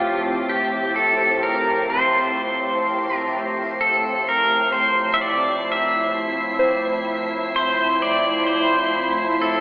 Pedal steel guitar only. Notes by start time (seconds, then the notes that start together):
Already playing: F4
0.49 G4
0.96 A4
1.43 A#4
1.90 C5
3.17 A#4
3.81 A4
4.29 A#4
4.72 C5
5.14 E5
5.21 D5
5.72 E5
7.56 C5
8.02 D5
8.46 C5
9.42 A4